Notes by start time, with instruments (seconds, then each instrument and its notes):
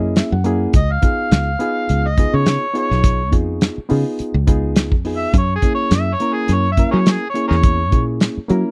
Already playing: fingered electric bass F#2, reed electric piano A#3 C#4 E4 G#4 D#5
0.16 reed electric piano E5, snare, closed hi-hat
0.32 fingered electric bass F#2, reed electric piano F#5
0.44 reed electric piano A#3 C#4 E4 G#4, closed hi-hat
0.73 fingered electric bass C#2, harmonica D#5, kick, closed hi-hat
0.92 harmonica F5
1.02 reed electric piano B3 D#4 F4 G#4, kick, closed hi-hat
1.31 fingered electric bass C#2, snare, closed hi-hat
1.59 reed electric piano B3 D#4 F4 G#4, closed hi-hat
1.89 fingered electric bass C#2, closed hi-hat
2.07 harmonica D#5
2.18 reed electric piano B3 D#4 F4 G#4, kick, closed hi-hat
2.34 fingered electric bass C#3, harmonica C#5
2.46 snare, closed hi-hat
2.73 reed electric piano B3 D#4 F4 G#4, closed hi-hat
2.78 harmonica C#5
2.91 fingered electric bass B1, snare
3.04 kick, closed hi-hat
3.31 fingered electric bass F2, reed electric piano B3 D#4 F4 G#4, kick, closed hi-hat
3.61 snare, closed hi-hat
3.78 muted fingered electric bass stroke
3.89 fingered electric bass C#3, reed electric piano B3 D#4 F4 G#4, open hi-hat
4.19 muted fingered electric bass stroke, closed hi-hat
4.34 fingered electric bass C#2
4.47 reed electric piano B3 D#4 F4 G#4, kick, closed hi-hat
4.76 snare, closed hi-hat
4.92 fingered electric bass F2, kick
5.05 reed electric piano B3 D#4 F4 G#4, open hi-hat
5.17 harmonica E5
5.34 fingered electric bass F#2, kick, closed hi-hat
5.38 harmonica C#5
5.56 harmonica G#4
5.62 reed electric piano A#3 C#4 E4 G#4, kick, closed hi-hat
5.75 harmonica C#5
5.91 fingered electric bass F#2, snare, closed hi-hat
5.95 harmonica E5
6.14 harmonica C#5
6.20 reed electric piano A#3 C#4 E4 A#4, closed hi-hat
6.33 harmonica G#4
6.48 fingered electric bass F#2, closed hi-hat
6.54 harmonica C#5
6.72 harmonica E5
6.77 reed electric piano A#3 C#4 E4 A#4, kick, closed hi-hat
6.91 fingered electric bass F#3, harmonica G#4 A#4 C#5
7.06 snare, closed hi-hat
7.10 harmonica G#4
7.30 harmonica C#5
7.34 reed electric piano A#3 C#4 E4 G#4, closed hi-hat
7.48 fingered electric bass E2, harmonica G#4 A#4 C#5, snare
7.63 kick, closed hi-hat
7.91 fingered electric bass A#2, reed electric piano A#3 C#4 E4 G#4, kick, closed hi-hat
8.20 snare, closed hi-hat
8.37 muted fingered electric bass stroke
8.48 fingered electric bass F#3, reed electric piano A#3 C#4 E4 A#4, closed hi-hat